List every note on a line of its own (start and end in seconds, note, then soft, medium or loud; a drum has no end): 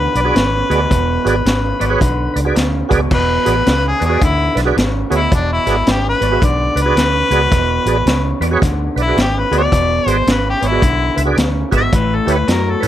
0.00 0.31 E2 medium
0.00 0.31 D3 medium
0.00 2.56 B4 medium
0.15 0.30 B1 medium
0.15 0.20 B4 medium
0.15 0.21 D5 medium
0.15 closed hi-hat medium
0.24 0.35 F#4 medium
0.24 0.35 G#4 medium
0.24 0.35 B4 medium
0.24 0.36 D5 medium
0.35 0.61 G#1 medium
0.35 0.66 E2 medium
0.35 0.66 C#3 medium
0.35 snare medium
0.35 closed hi-hat medium
0.69 0.85 D2 medium
0.69 0.89 E2 medium
0.69 0.89 B2 medium
0.69 0.80 F#4 medium
0.69 0.80 G#4 medium
0.69 0.81 B4 medium
0.69 0.81 D5 medium
0.69 closed hi-hat soft
0.90 1.17 E1 medium
0.90 1.41 E2 medium
0.90 1.41 B2 loud
0.90 kick loud
0.90 closed hi-hat medium
1.25 1.40 G#1 medium
1.25 1.35 F#4 medium
1.25 1.36 G#4 medium
1.25 1.36 B4 medium
1.25 1.36 D5 medium
1.25 closed hi-hat medium
1.45 1.71 G#1 medium
1.45 1.77 E2 medium
1.45 1.77 C#3 medium
1.45 snare medium
1.45 closed hi-hat medium
1.79 1.96 G#1 medium
1.79 1.99 E2 medium
1.79 1.99 B2 medium
1.79 1.85 B4 medium
1.79 1.86 D5 medium
1.79 closed hi-hat medium
1.89 2.00 F#4 medium
1.89 2.00 G#4 medium
1.89 2.01 B4 medium
1.89 2.01 C#5 medium
2.00 2.27 B1 medium
2.00 2.52 E2 medium
2.00 2.52 D3 medium
2.00 kick loud
2.00 closed hi-hat medium
2.34 2.51 C#2 medium
2.34 2.40 B4 medium
2.34 2.41 D5 medium
2.34 closed hi-hat medium
2.45 2.56 F#4 medium
2.45 2.56 G#4 medium
2.45 2.56 B4 medium
2.45 2.56 D5 medium
2.56 2.82 D2 medium
2.56 2.87 E2 medium
2.56 2.87 C#3 medium
2.56 snare medium
2.56 closed hi-hat medium
2.89 3.06 C#2 medium
2.89 3.09 E2 medium
2.89 3.09 B2 medium
2.89 3.00 F#4 medium
2.89 3.00 G#4 medium
2.89 3.01 B4 medium
2.89 3.01 D5 medium
2.89 kick medium
2.89 closed hi-hat medium
3.11 3.37 E1 medium
3.11 3.62 E2 medium
3.11 3.62 B2 medium
3.11 kick loud
3.11 crash medium
3.15 3.84 B4 medium
3.45 3.61 A1 medium
3.45 3.56 F#4 medium
3.45 3.56 G#4 medium
3.45 3.56 B4 medium
3.45 3.57 D5 medium
3.45 closed hi-hat medium
3.66 3.92 C#2 medium
3.66 3.98 E2 medium
3.66 3.98 C#3 medium
3.66 snare medium
3.66 closed hi-hat medium
3.88 4.04 G#4 medium
4.00 4.19 E2 medium
4.00 4.16 E2 medium
4.00 4.20 B2 medium
4.00 4.05 B4 medium
4.00 4.06 D5 medium
4.00 closed hi-hat medium
4.05 4.20 F#4 medium
4.05 4.22 G#4 medium
4.10 4.21 G#4 medium
4.10 4.21 B4 medium
4.10 4.21 D5 medium
4.21 4.47 D2 medium
4.21 4.72 E2 medium
4.21 4.73 D3 medium
4.21 4.57 E4 medium
4.21 kick loud
4.21 closed hi-hat medium
4.55 4.71 B1 medium
4.55 4.61 B4 medium
4.55 4.62 D5 medium
4.55 snare soft
4.55 closed hi-hat medium
4.65 4.76 F#4 medium
4.65 4.76 G#4 medium
4.65 4.77 B4 medium
4.65 4.77 D5 medium
4.77 5.02 G#1 medium
4.77 5.08 E2 medium
4.77 5.08 C#3 medium
4.77 snare medium
4.77 closed hi-hat medium
5.10 5.26 D2 medium
5.10 5.29 E2 medium
5.10 5.30 B2 medium
5.10 5.21 F#4 medium
5.10 5.21 G#4 medium
5.10 5.21 B4 medium
5.10 5.22 C#5 medium
5.10 closed hi-hat medium
5.16 5.33 E4 medium
5.31 5.57 E1 medium
5.31 5.82 E2 medium
5.31 5.83 B2 medium
5.31 5.51 D4 medium
5.31 kick loud
5.31 closed hi-hat medium
5.53 5.87 E4 medium
5.66 5.81 G#1 medium
5.66 5.76 F#4 medium
5.66 5.77 G#4 medium
5.66 5.77 B4 medium
5.66 5.77 D5 medium
5.66 snare soft
5.66 closed hi-hat medium
5.86 6.13 G#1 medium
5.86 6.18 E2 medium
5.86 6.18 C#3 medium
5.86 snare medium
5.86 closed hi-hat medium
5.91 6.07 G4 medium
6.09 6.46 B4 medium
6.21 6.36 G#1 medium
6.21 6.40 E2 medium
6.21 6.40 B2 medium
6.21 6.26 B4 medium
6.21 6.27 D5 medium
6.21 closed hi-hat medium
6.31 6.42 F#4 medium
6.31 6.42 G#4 medium
6.31 6.42 B4 medium
6.31 6.43 E5 medium
6.42 6.68 B1 medium
6.42 6.93 E2 medium
6.42 6.93 D3 medium
6.42 6.79 D5 medium
6.42 kick loud
6.42 closed hi-hat medium
6.76 6.91 C#2 medium
6.76 6.81 B4 medium
6.76 6.82 D5 medium
6.76 closed hi-hat medium
6.82 6.96 F#4 medium
6.82 8.41 B4 loud
6.86 6.96 G#4 medium
6.86 6.97 B4 medium
6.86 6.97 D5 medium
6.96 7.22 D2 medium
6.96 7.28 E2 medium
6.96 7.28 C#3 medium
6.96 snare medium
6.96 closed hi-hat medium
7.31 7.46 C#2 medium
7.31 7.49 E2 medium
7.31 7.50 B2 medium
7.31 7.42 F#4 medium
7.31 7.42 G#4 medium
7.31 7.42 B4 medium
7.31 7.43 D5 medium
7.31 closed hi-hat medium
7.51 7.78 E1 medium
7.51 8.02 E2 medium
7.51 8.03 B2 medium
7.51 kick loud
7.51 snare soft
7.51 closed hi-hat medium
7.86 8.01 A1 medium
7.86 7.97 F#4 medium
7.86 7.97 G#4 medium
7.86 7.97 B4 medium
7.86 7.98 D5 medium
7.86 closed hi-hat medium
8.06 8.32 C#2 medium
8.06 8.38 E2 medium
8.06 8.38 C#3 medium
8.06 snare loud
8.06 closed hi-hat medium
8.40 8.56 E2 medium
8.40 8.60 E2 medium
8.40 8.60 B2 medium
8.40 8.46 B4 medium
8.40 8.47 D5 medium
8.40 closed hi-hat medium
8.51 8.62 F#4 medium
8.51 8.62 G#4 medium
8.51 8.63 B4 medium
8.51 8.63 C#5 medium
8.62 8.88 D2 medium
8.62 9.13 E2 medium
8.62 9.13 D3 medium
8.62 kick loud
8.62 snare soft
8.62 closed hi-hat medium
8.96 9.11 B1 medium
8.96 9.02 B4 medium
8.96 9.03 D5 medium
8.96 closed hi-hat medium
9.02 9.18 E4 medium
9.08 9.17 F#4 medium
9.08 9.18 G#4 medium
9.08 9.18 B4 medium
9.08 9.18 D5 medium
9.16 9.42 G#1 medium
9.16 9.48 E2 medium
9.16 9.49 C#3 medium
9.16 snare loud
9.16 closed hi-hat medium
9.21 9.41 G4 medium
9.39 9.55 B4 medium
9.51 9.67 D2 medium
9.51 9.70 E2 medium
9.51 9.70 B2 medium
9.51 9.62 F#4 medium
9.51 9.62 G#4 medium
9.51 9.62 B4 medium
9.51 9.63 D5 medium
9.51 closed hi-hat medium
9.58 10.09 D5 medium
9.72 9.98 E1 medium
9.72 10.23 E2 medium
9.72 10.23 B2 loud
9.72 kick medium
9.72 closed hi-hat medium
10.06 10.22 G#1 medium
10.06 10.17 F#4 medium
10.06 10.17 G#4 medium
10.06 10.18 B4 medium
10.06 10.27 C5 medium
10.06 10.18 D5 medium
10.06 closed hi-hat medium
10.27 10.53 G#1 medium
10.27 10.59 E2 medium
10.27 10.59 C#3 medium
10.27 snare medium
10.27 closed hi-hat medium
10.31 10.47 B4 medium
10.50 10.69 G4 medium
10.61 10.77 G#1 medium
10.61 10.80 E2 medium
10.61 10.81 B2 medium
10.61 10.67 B4 medium
10.61 10.68 C#5 medium
10.61 closed hi-hat medium
10.67 11.19 E4 medium
10.71 10.82 F#4 medium
10.71 10.82 G#4 medium
10.71 10.83 B4 medium
10.71 10.83 D5 medium
10.82 11.08 B1 medium
10.82 11.34 E2 medium
10.82 11.34 D3 medium
10.82 kick loud
10.82 closed hi-hat medium
11.16 11.32 C#2 medium
11.16 11.22 B4 medium
11.16 11.23 E5 medium
11.16 closed hi-hat medium
11.25 11.37 F#4 medium
11.25 11.37 G#4 medium
11.25 11.37 B4 medium
11.25 11.38 D5 medium
11.37 11.63 D2 medium
11.37 11.69 E2 medium
11.37 11.69 C#3 medium
11.37 snare medium
11.37 closed hi-hat medium
11.71 11.87 G#1 medium
11.71 11.91 E2 medium
11.71 11.91 B2 medium
11.71 11.82 F#4 medium
11.71 11.82 G#4 medium
11.71 11.83 B4 medium
11.71 11.83 E5 medium
11.71 kick medium
11.71 closed hi-hat medium
11.78 11.98 E5 loud
11.93 12.18 A1 medium
11.93 12.44 A2 medium
11.93 12.44 E3 medium
11.93 kick loud
11.93 closed hi-hat medium
11.97 12.17 B4 medium
12.15 12.34 A4 medium
12.26 12.42 D2 medium
12.26 12.37 E4 medium
12.26 12.37 G4 medium
12.26 12.38 B4 medium
12.26 12.38 C#5 medium
12.26 closed hi-hat medium
12.33 12.49 B4 medium
12.48 12.74 F#2 medium
12.48 12.79 A2 medium
12.48 12.79 F#3 medium
12.48 12.72 A#4 medium
12.48 snare medium
12.48 closed hi-hat medium
12.70 12.86 A4 medium
12.80 12.88 A2 medium
12.80 12.88 E3 medium
12.80 12.87 B4 medium
12.80 12.88 C#5 medium
12.80 closed hi-hat medium